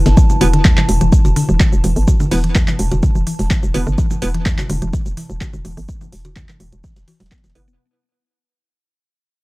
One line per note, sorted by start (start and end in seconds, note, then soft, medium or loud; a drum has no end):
0.00 7.79 E4 loud
0.00 7.79 B4 medium
0.00 7.79 A5 medium
0.06 0.15 G1 medium
0.06 0.13 D3 medium
0.06 snare loud
0.06 closed hi-hat medium
0.06 shaker soft
0.17 0.22 E3 medium
0.17 kick loud
0.17 closed hi-hat medium
0.17 shaker medium
0.30 closed hi-hat soft
0.30 low conga medium
0.30 shaker soft
0.41 0.66 E1 loud
0.41 0.44 D3 medium
0.41 0.48 B3 loud
0.41 0.48 E4 medium
0.41 0.48 B4 loud
0.41 closed hi-hat medium
0.41 open hi-hat medium
0.41 cowbell medium
0.53 0.60 D3 loud
0.53 snare soft
0.53 closed hi-hat soft
0.65 0.75 E2 loud
0.65 0.72 E3 medium
0.65 kick loud
0.65 snare loud
0.65 clap medium
0.65 closed hi-hat medium
0.65 shaker medium
0.77 0.82 E3 medium
0.77 snare medium
0.77 clap medium
0.77 high conga medium
0.77 shaker soft
0.89 0.99 E1 medium
0.89 closed hi-hat medium
0.89 open hi-hat medium
0.89 low conga medium
1.01 1.10 E1 medium
1.01 1.06 E3 medium
1.01 closed hi-hat soft
1.01 high conga medium
1.01 shaker soft
1.12 kick loud
1.12 closed hi-hat medium
1.12 shaker medium
1.25 1.34 E1 medium
1.25 1.28 D3 medium
1.25 closed hi-hat soft
1.25 cowbell medium
1.25 high conga medium
1.25 shaker soft
1.36 1.44 D3 loud
1.36 snare medium
1.36 closed hi-hat medium
1.36 open hi-hat medium
1.49 1.58 E1 medium
1.49 1.56 E3 medium
1.49 high conga medium
1.49 shaker soft
1.60 1.65 E3 medium
1.60 kick loud
1.60 snare loud
1.60 clap medium
1.60 closed hi-hat medium
1.60 shaker medium
1.73 1.82 E1 medium
1.73 shaker soft
1.84 1.94 E1 medium
1.84 1.89 E3 medium
1.84 closed hi-hat medium
1.84 open hi-hat medium
1.84 low conga medium
1.96 2.06 G1 medium
1.96 open hi-hat soft
1.96 shaker soft
2.08 2.11 D3 medium
2.08 kick loud
2.08 closed hi-hat medium
2.08 cowbell medium
2.08 shaker medium
2.20 2.27 D3 loud
2.20 closed hi-hat soft
2.20 low conga medium
2.20 shaker soft
2.31 2.57 E1 loud
2.31 2.39 E3 medium
2.31 2.38 B3 medium
2.31 2.38 E4 medium
2.31 2.38 B4 loud
2.31 open hi-hat medium
2.44 2.49 E3 medium
2.44 closed hi-hat soft
2.55 2.66 E2 loud
2.55 kick loud
2.55 snare loud
2.55 clap medium
2.55 closed hi-hat medium
2.55 shaker medium
2.68 2.72 E3 medium
2.68 clap medium
2.68 high conga medium
2.68 shaker soft
2.79 2.89 E1 medium
2.79 closed hi-hat medium
2.79 open hi-hat medium
2.79 low conga medium
2.92 3.01 E1 medium
2.92 2.94 D3 medium
2.92 closed hi-hat soft
2.92 cowbell medium
2.92 high conga medium
2.92 shaker soft
3.03 3.11 D3 loud
3.03 kick loud
3.03 closed hi-hat medium
3.03 shaker medium
3.15 3.25 E1 medium
3.15 3.22 E3 medium
3.15 shaker soft
3.27 3.32 E3 medium
3.27 closed hi-hat medium
3.27 open hi-hat medium
3.39 3.49 E1 medium
3.39 snare medium
3.39 open hi-hat medium
3.39 high conga medium
3.39 shaker soft
3.50 3.56 E3 medium
3.50 kick loud
3.50 snare loud
3.50 clap medium
3.50 closed hi-hat medium
3.50 shaker medium
3.63 3.72 E1 medium
3.63 shaker soft
3.74 3.85 E1 medium
3.74 3.77 D3 medium
3.74 3.85 B3 loud
3.74 3.86 E4 medium
3.74 3.86 B4 loud
3.74 closed hi-hat medium
3.74 open hi-hat medium
3.74 cowbell medium
3.74 high conga medium
3.87 3.96 G1 medium
3.87 3.94 D3 loud
3.87 shaker soft
3.98 4.06 E3 medium
3.98 kick loud
3.98 closed hi-hat medium
3.98 shaker medium
4.11 4.15 E3 medium
4.11 closed hi-hat soft
4.11 low conga medium
4.11 shaker soft
4.22 4.47 E1 loud
4.22 4.29 B3 loud
4.22 4.29 E4 medium
4.22 4.29 B4 loud
4.22 closed hi-hat medium
4.22 open hi-hat medium
4.34 4.39 E3 medium
4.34 snare soft
4.34 closed hi-hat soft
4.46 4.56 E2 loud
4.46 kick loud
4.46 snare loud
4.46 clap medium
4.46 closed hi-hat medium
4.46 shaker medium
4.58 4.61 D3 medium
4.58 snare medium
4.58 clap medium
4.58 cowbell medium
4.58 high conga medium
4.58 shaker soft
4.70 4.80 E1 medium
4.70 4.77 D3 loud
4.70 closed hi-hat medium
4.70 open hi-hat medium
4.70 low conga medium
4.82 4.91 E1 medium
4.82 4.89 E3 medium
4.82 closed hi-hat soft
4.82 high conga medium
4.82 shaker soft
4.93 4.98 E3 medium
4.93 kick loud
4.93 closed hi-hat medium
4.93 shaker medium
5.06 5.15 E1 medium
5.06 closed hi-hat soft
5.06 high conga medium
5.06 shaker soft
5.17 5.22 E3 medium
5.17 snare medium
5.17 closed hi-hat medium
5.17 open hi-hat medium
5.30 5.39 E1 loud
5.30 high conga medium
5.30 shaker soft
5.41 5.44 D3 medium
5.41 kick loud
5.41 snare loud
5.41 clap medium
5.41 closed hi-hat medium
5.41 cowbell medium
5.41 shaker medium
5.53 5.63 E1 loud
5.53 5.60 D3 loud
5.53 shaker soft
5.65 5.75 E1 medium
5.65 5.72 E3 medium
5.65 closed hi-hat medium
5.65 open hi-hat medium
5.65 low conga medium
5.77 5.87 G1 loud
5.77 5.82 E3 medium
5.77 open hi-hat medium
5.77 shaker soft
5.89 kick loud
5.89 closed hi-hat medium
5.89 shaker medium
6.01 6.06 E3 medium
6.01 closed hi-hat soft
6.01 low conga medium
6.01 shaker soft
6.12 6.38 E1 loud
6.12 open hi-hat medium
6.25 6.28 D3 medium
6.25 closed hi-hat soft
6.25 cowbell medium
6.25 shaker soft
6.36 6.46 E2 loud
6.36 6.44 D3 loud
6.36 kick loud
6.36 snare loud
6.36 clap medium
6.36 closed hi-hat medium
6.36 shaker medium
6.49 6.56 E3 medium
6.49 clap medium
6.49 high conga medium
6.49 shaker soft
6.60 6.70 E1 loud
6.60 6.65 E3 medium
6.60 closed hi-hat medium
6.60 open hi-hat medium
6.60 low conga medium
6.73 6.82 E1 medium
6.73 closed hi-hat soft
6.73 high conga medium
6.73 shaker soft
6.84 6.89 E3 medium
6.84 kick loud
6.84 snare loud
6.84 closed hi-hat medium
6.84 shaker medium
6.96 7.06 E1 medium
6.96 snare loud
6.96 closed hi-hat medium
6.96 shaker soft
7.08 7.13 E3 medium
7.08 snare loud
7.08 closed hi-hat medium
7.08 open hi-hat medium
7.08 cowbell medium
7.20 7.29 E1 loud
7.20 7.25 F#3 medium
7.20 snare medium
7.20 closed hi-hat medium
7.20 open hi-hat medium
7.20 high conga medium
7.20 shaker soft
7.26 snare medium
7.26 closed hi-hat medium
7.32 7.37 B3 medium
7.32 kick loud
7.32 snare medium
7.32 clap medium
7.32 shaker medium
7.38 snare medium
7.38 closed hi-hat medium
7.44 7.53 E1 medium
7.44 7.51 E3 medium
7.44 snare medium
7.44 closed hi-hat medium
7.44 shaker soft
7.50 snare medium
7.50 closed hi-hat medium
7.55 7.69 G1 loud
7.55 7.66 B3 loud
7.55 7.66 E4 medium
7.55 7.66 B4 loud
7.55 closed hi-hat medium
7.55 open hi-hat medium
7.55 high conga medium
7.68 7.77 E1 medium
7.68 7.71 B3 medium
7.68 shaker soft